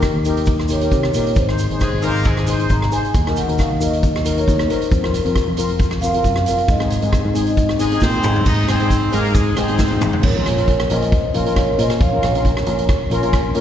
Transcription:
Already playing: D#4 G4 A#4
0.02 kick, cross-stick, closed hi-hat, shaker
0.14 D#2
0.25 D#4 G4 A#4, closed hi-hat, shaker
0.36 closed hi-hat, shaker
0.46 kick, closed hi-hat, shaker
0.60 cross-stick
0.68 D#4 G4 A#4 C#5, closed hi-hat, shaker
0.79 D#4 G4 C#5, closed hi-hat, shaker
0.83 A#4 C#5
0.91 C3 C#5, kick, closed hi-hat, shaker
1.02 C#5, cross-stick
1.08 C#5
1.14 A#2 D#4 G4 A#4 C#5, closed hi-hat, shaker
1.24 C#5, closed hi-hat, shaker
1.36 G#1 C5, kick, closed hi-hat, shaker
1.47 D#4 G#4 C5, cross-stick
1.58 closed hi-hat, shaker
1.70 G#1 D#4 G#4 C5, closed hi-hat
1.80 G#3 G#4, kick, cross-stick, closed hi-hat, shaker
1.93 G#1
2.02 A#3 D#4 G#4 A#4 C5, closed hi-hat, shaker
2.15 closed hi-hat
2.24 G#3 G#4, kick, closed hi-hat, shaker
2.37 cross-stick
2.47 D#4 G#4 C5, closed hi-hat, shaker
2.59 D#4 G#4 C5, closed hi-hat, shaker
2.69 G#1 A#5, kick, closed hi-hat, shaker
2.82 cross-stick
2.92 D#4 G#4 C5 G#5, closed hi-hat, shaker
3.05 closed hi-hat, shaker
3.15 D#2, kick, closed hi-hat, shaker
3.27 D#4 F#4 A#4, cross-stick
3.36 F#5, closed hi-hat, shaker
3.48 D#2 D#4 F#4 A#4, closed hi-hat
3.58 F5, kick, cross-stick, closed hi-hat, shaker
3.71 D#2
3.80 D#4 F#4 A#4 D#5, closed hi-hat, shaker
3.91 D#5, closed hi-hat
3.98 D#5
4.03 D#5, kick, closed hi-hat, shaker
4.14 D#5, cross-stick
4.21 D#4 D#5
4.25 F#4 A#4, closed hi-hat, shaker
4.37 D#4 F#4 A#4 C#5, closed hi-hat, shaker
4.48 D#2, kick, closed hi-hat, shaker
4.59 cross-stick
4.69 D#4 F#4 A#4 C5, closed hi-hat
4.82 closed hi-hat, shaker
4.92 F2, kick, closed hi-hat, shaker
5.02 C4 F4 A#4, cross-stick
5.14 A#4, closed hi-hat, shaker
5.25 F2 C4 F4 A#4, closed hi-hat
5.36 kick, cross-stick, closed hi-hat, shaker
5.48 F2
5.57 C4 F4 A#4, closed hi-hat, shaker
5.69 closed hi-hat
5.79 kick, closed hi-hat, shaker
5.91 cross-stick
6.01 C4 F4 A#4 F5, closed hi-hat, shaker
6.14 C4 F4 A#4, closed hi-hat
6.24 F#2, kick, closed hi-hat, shaker
6.36 cross-stick
6.46 C4 F4 A#4, closed hi-hat, shaker
6.58 closed hi-hat, shaker
6.68 G#2 D#5, kick, closed hi-hat, shaker
6.79 C4 D#4 G#4 D#5, cross-stick
6.85 D#5
6.90 D#5, closed hi-hat, shaker
7.00 G#2 C4 D#4 G#4 D#5, closed hi-hat, shaker
7.06 D#5
7.13 D#5, kick, cross-stick, closed hi-hat, shaker
7.22 G#2 D#5
7.28 D#5
7.33 C4 D#4 G#4 D#5, closed hi-hat, shaker
7.46 D#5, closed hi-hat, shaker
7.52 D#5
7.57 D#5, kick, closed hi-hat, shaker
7.69 cross-stick
7.79 G#3 C4 D#4 G#4, closed hi-hat, shaker
7.91 C4 D#4 G#4, closed hi-hat, shaker
8.00 A#2 C4 C5, kick, snare, shaker
8.23 G#2 C4 D#4 G#4, mid tom, shaker
8.36 floor tom, shaker
8.46 G#2 D#4 D#5, kick, crash, shaker
8.68 G#2 C4 D#4 G#4 C5, cross-stick, closed hi-hat, shaker
8.80 C4 D#4 G#4, closed hi-hat
8.90 kick, closed hi-hat, shaker
9.12 G#2 A#3 C4 D#4 G#4 A#4, closed hi-hat, shaker
9.25 closed hi-hat
9.34 G#3 G#4, kick, closed hi-hat, shaker
9.56 G#2 C4 D#4 G#4 C5, cross-stick, closed hi-hat, shaker
9.68 C4 D#4 G#4, closed hi-hat
9.79 kick, snare, shaker
9.90 G#2, high tom
10.01 mid tom, shaker
10.13 floor tom
10.23 A#1 A#4 C#5, kick, crash
10.35 C#4 F4 A#4
10.45 A#1 A#4 C#5, cross-stick, closed hi-hat
10.56 C#4 F4 A#4, closed hi-hat
10.68 kick, closed hi-hat
10.80 cross-stick
10.90 A#1 C#4 F4 A#4 C5 D#5, closed hi-hat
11.02 closed hi-hat
11.12 kick, closed hi-hat
11.33 A#1 C#4 F4 A#4 C#5 F5, closed hi-hat
11.45 C#4 F4 A#4, closed hi-hat
11.56 A#4 C#5, kick, cross-stick, closed hi-hat
11.77 A#2 C#4 F4 A#4 C5 D#5, closed hi-hat
11.90 cross-stick, closed hi-hat
12.01 A#1 C#5 F5, kick, closed hi-hat
12.13 C#4 F4 A#4
12.23 A#1 A#4 C#5, cross-stick, closed hi-hat
12.34 C#4 F4 A#4, closed hi-hat
12.45 A#4 C#5, kick, closed hi-hat
12.57 cross-stick
12.66 A#1 C#4 F4 A#4, closed hi-hat
12.79 closed hi-hat
12.89 kick, cross-stick, closed hi-hat
13.10 A#1 C#4 F4 A#4, closed hi-hat
13.22 C#4 F4 A#4, closed hi-hat
13.33 kick, cross-stick, closed hi-hat
13.55 A#2 C#4 F4 A#4, closed hi-hat

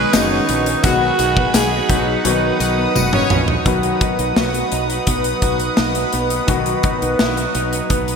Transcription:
Already playing: D#3 B3 C#4 F#4 B4 D#5 C#6
0.13 F#1 D#3 G#3 B3 C#4 D#4 F#4 G#4, snare, closed hi-hat, tambourine
0.31 C#4
0.48 A#1 B3, closed hi-hat, tambourine
0.66 C#4, closed hi-hat
0.83 B1 D#3 F#3 G#3 B3 F#4 G#4 F#5 B5, kick, closed hi-hat, tambourine
1.02 B3
1.19 B1 D#4, closed hi-hat, tambourine
1.36 B3 B4, kick
1.54 B1 G#3 F#4 G#4, snare, closed hi-hat, tambourine
1.72 D#4
1.89 B1 F#3 B3 D#4 F#4, kick, closed hi-hat
2.07 D#4
2.24 B1 D#3 F#3 B3 F#4 B4 D#6, closed hi-hat
2.43 B3
2.60 B1 B3 D#4 B4, closed hi-hat, tambourine
2.78 B3
2.95 F#1 F#4, high tom, tambourine
3.13 C#4 D#4 C#5, mid tom
3.30 A#1 B3, mid tom, tambourine
3.48 D#4, floor tom
3.64 B1 D#3 F#3 B3 D#4 F#4 B4 F#5 D#6, kick, closed hi-hat
3.83 closed hi-hat
4.01 D#4, kick, closed hi-hat
4.19 B1, closed hi-hat
4.36 B1 F#4, snare
4.54 closed hi-hat
4.72 B1 D#4, closed hi-hat
4.90 closed hi-hat
5.07 B1 B3, kick, closed hi-hat
5.24 closed hi-hat
5.42 B1 F#4, kick, closed hi-hat
5.60 closed hi-hat
5.77 B1 D#4, snare
5.95 closed hi-hat
6.13 B1 B3, closed hi-hat
6.30 closed hi-hat
6.47 B1 D#3 F#3 B3 F#4, kick, closed hi-hat
6.66 closed hi-hat
6.83 D#4, kick, closed hi-hat
7.02 B1, closed hi-hat
7.19 B1 E4, snare
7.37 F#4, closed hi-hat
7.55 B1 D#4, closed hi-hat
7.73 closed hi-hat
7.90 B1 B3, kick, closed hi-hat
8.08 closed hi-hat

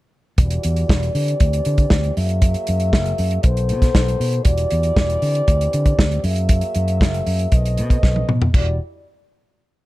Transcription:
0.38 E1 E3 G3 F#4 D5, kick, closed hi-hat
0.51 closed hi-hat
0.63 E2, closed hi-hat
0.76 closed hi-hat
0.89 E1, kick, snare
1.03 closed hi-hat
1.13 D3 E3 C4 G4, open hi-hat
1.28 closed hi-hat
1.40 D2, kick, closed hi-hat
1.53 closed hi-hat
1.65 D3, closed hi-hat
1.78 kick, closed hi-hat
1.90 D2, kick, snare
2.04 closed hi-hat
2.16 F#2 F#3 A#3 G#4 E5, open hi-hat
2.29 closed hi-hat
2.42 kick, closed hi-hat
2.54 closed hi-hat
2.67 F#2, closed hi-hat
2.80 closed hi-hat
2.93 F#1, kick, snare
3.06 closed hi-hat
3.18 F#2, open hi-hat
3.31 closed hi-hat
3.43 B1 D#3 B3 A4 C5, kick, closed hi-hat
3.57 closed hi-hat
3.69 B2, closed hi-hat
3.82 kick, snare, closed hi-hat
3.95 B1, kick, snare
4.08 closed hi-hat
4.20 B2, open hi-hat
4.33 closed hi-hat
4.43 E1 E3 G3 F#4 D5, kick, closed hi-hat
4.58 closed hi-hat
4.71 E2, closed hi-hat
4.83 closed hi-hat
4.96 E1, kick, snare
5.10 closed hi-hat
5.21 D3 C4 G4, open hi-hat
5.35 closed hi-hat
5.48 D2, kick, closed hi-hat
5.61 closed hi-hat
5.73 D3, closed hi-hat
5.86 kick, closed hi-hat
5.99 D2, kick, snare
6.12 closed hi-hat
6.24 F#2 F#3 A#3 G#4 E5, open hi-hat
6.36 closed hi-hat
6.49 kick, closed hi-hat
6.61 closed hi-hat
6.75 F#2, closed hi-hat
6.88 closed hi-hat
7.01 F#1, kick, snare
7.14 closed hi-hat
7.26 F#2, open hi-hat
7.39 closed hi-hat
7.52 B1 A3 C4 B4 D#5, kick, closed hi-hat
7.66 closed hi-hat
7.78 B2, closed hi-hat
7.90 kick, closed hi-hat
8.03 B1, kick, snare
8.16 high tom
8.29 B2, mid tom
8.42 floor tom
8.54 E1 G3 E4 F#4 D5, kick, crash

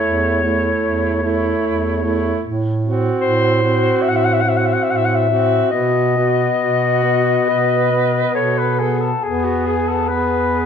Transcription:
Already playing: A3 E4 C#5
0.02 E2
0.43 A3 E4
0.83 E2
1.23 A3 E4
1.64 E2
2.03 A3 E4
2.42 A2
2.83 C4 F#4
3.21 A2 C5
3.63 C4 F#4
4.02 A2 E5
4.08 F#5
4.16 E5
4.24 F#5
4.33 E5
4.41 C4 F#4 F#5
4.49 E5
4.57 F#5
4.66 E5
4.73 F#5
4.83 A2 E5
4.90 F#5
4.96 E5
5.05 F#5
5.15 E5
5.29 C4 F#4
5.71 B2 B3 F#4 D#5
6.17 B3 F#4
6.60 B2 F#4
7.04 B3
7.49 B2 B4
7.92 B3
8.35 B2 A4 C#5
8.58 B4
8.79 B3 G#4
9.01 A4
9.23 E2 B3 G#4
9.44 F#4
9.65 G#4
9.88 A4
10.09 B3 G#4 B4

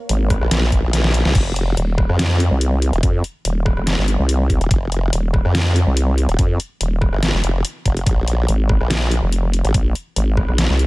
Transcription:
Already playing: A#3 A#4 C#5 F5
0.09 G#1, closed hi-hat
0.30 kick, cross-stick, closed hi-hat
0.41 A#1, cross-stick
0.51 A#1, snare, closed hi-hat
0.72 kick, closed hi-hat
0.83 A#1
0.93 snare, closed hi-hat
1.04 snare
1.14 closed hi-hat
1.25 C2, snare
1.35 F1, kick, closed hi-hat, crash
1.56 closed hi-hat
1.77 D#1, closed hi-hat
1.98 kick, cross-stick
2.09 F2, cross-stick
2.19 snare, closed hi-hat
2.40 closed hi-hat
2.51 C2
2.61 closed hi-hat
2.82 closed hi-hat
2.93 D#1, closed hi-hat
3.03 F2, kick, closed hi-hat
3.24 closed hi-hat
3.45 D#1, closed hi-hat
3.66 kick, cross-stick
3.77 F1, cross-stick
3.87 snare, closed hi-hat
3.98 G1
4.08 closed hi-hat
4.19 C2
4.29 closed hi-hat
4.50 kick, closed hi-hat
4.61 D#1, closed hi-hat
4.71 F1, kick, closed hi-hat
4.92 closed hi-hat
5.13 D#1, closed hi-hat
5.34 kick, cross-stick
5.45 F2, cross-stick
5.55 snare, closed hi-hat
5.76 closed hi-hat
5.87 C2
5.97 closed hi-hat
6.18 closed hi-hat
6.29 D#1, closed hi-hat
6.39 F2, kick, closed hi-hat
6.60 closed hi-hat
6.81 D#1, closed hi-hat
7.02 kick, cross-stick
7.13 G1, cross-stick
7.23 snare, closed hi-hat
7.34 F1
7.44 F1, closed hi-hat
7.65 closed hi-hat
7.86 F1, kick, closed hi-hat
7.97 closed hi-hat
8.06 A#1, kick, closed hi-hat
8.28 closed hi-hat
8.48 G#1, closed hi-hat
8.69 kick, cross-stick
8.81 A#1, cross-stick
8.90 snare, closed hi-hat
9.11 closed hi-hat
9.22 F1
9.32 closed hi-hat
9.53 closed hi-hat
9.64 G#1, closed hi-hat
9.74 A#1, kick, closed hi-hat
9.95 closed hi-hat
10.16 G#1, closed hi-hat
10.37 kick, cross-stick
10.48 A#1, cross-stick
10.58 snare, closed hi-hat
10.69 C2
10.79 closed hi-hat

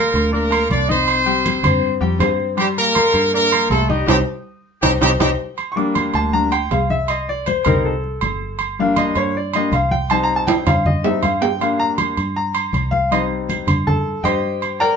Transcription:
Already playing: A#3 A#4 A#5
0.14 D2, high conga, low agogo
0.32 A#3 D4 A#4 D5 D6, high conga
0.50 A#3 A#4 A#5, high conga, low agogo
0.70 C2 D4 D5, high conga, low agogo
0.89 C4 D#4 C5 D#5 D#6, high conga
1.08 high conga, low agogo
1.26 G3 G4 G5, high conga
1.46 high conga, low agogo
1.63 G2 C4 C5 C6, high conga, low conga, low agogo
1.83 high conga
2.01 F2 G3 G4 G5, high conga
2.19 G2 C4 C5 C6, high conga, low timbale, low agogo
2.40 high conga
2.57 G3 G4 G5, high conga, low agogo
2.78 A#3 A#4, high conga
2.95 A#3 A#4 A#5, high conga, low agogo
3.14 G2, high conga, low agogo
3.33 A#3 D4 A#4 D5 D6, high conga
3.52 A#3 A#4 A#5, high conga, low agogo
3.70 C2 A3 A4, high conga, low timbale, low agogo
3.89 G3 D#4 G4 D#5 D#6, high conga
4.07 C2 C4 D#4 G4 C5, high conga, high timbale
4.82 C2 C4 D#4 G4 C5, high conga, high timbale
5.01 C2 C4 D#4 G4 C5, high conga, high timbale
5.20 C2 C4 D#4 G4 C5, high conga, high timbale
5.58 high conga, low agogo
5.72 C#6
5.76 G3 A#3 D4 D6, high conga
5.95 C6, high conga, low agogo
6.14 D2 A5, high conga, low agogo
6.33 G3 A#3 D4 A#5, high conga
6.52 G5, high conga, low agogo
6.71 C2 F5, high conga, low timbale, low agogo
6.90 E5, high conga
7.08 D#5, high conga, low agogo
7.29 D5, high conga
7.46 C5, high conga, low agogo
7.65 C2 G3 C4 D#4 A#4, high conga, low conga, low agogo
7.85 A4, high conga
8.04 high conga
8.21 G1, high conga, low agogo
8.41 high conga
8.59 high conga, low agogo
8.79 G3 A#3 D4 F5, high conga
8.96 D#5, high conga, low agogo
9.15 G2 C#5, high conga, low agogo
9.35 D5, high conga
9.54 G3 A#3 D4 D#5, high conga, low agogo
9.72 C2 F5, high conga, low agogo
9.91 G5, high conga
10.10 G3 C4 D#4 A5, high conga, low agogo
10.23 A#5
10.29 high conga
10.36 A5
10.47 G5, high conga, high timbale, low agogo
10.67 G2 F5, high conga, low conga, high timbale, low agogo
10.86 D#5, high conga, low conga
11.04 G3 C4 D#4 E5, high conga, low timbale
11.23 G2 F5, high conga, low agogo
11.41 G5, high conga, low timbale
11.60 G3 A#3 D4 F5, high conga, low agogo
11.79 A#5, high conga
11.98 high conga, low agogo
12.17 G2, high conga, low agogo
12.36 A#5, high conga
12.55 high conga, low agogo
12.73 C2, high conga, low agogo
12.91 F5, high conga
13.11 G3 C4 D#4 D#5, high conga, low agogo
13.31 high conga
13.49 high conga, low agogo
13.67 G2, high conga, low conga, low agogo
13.87 A4 A5, high conga, low conga
14.06 high conga
14.24 G2 G4 C5 D#5 G5, high conga, low agogo
14.44 high conga
14.62 high conga, low agogo
14.80 A#4 D5 G5 A#5, high conga

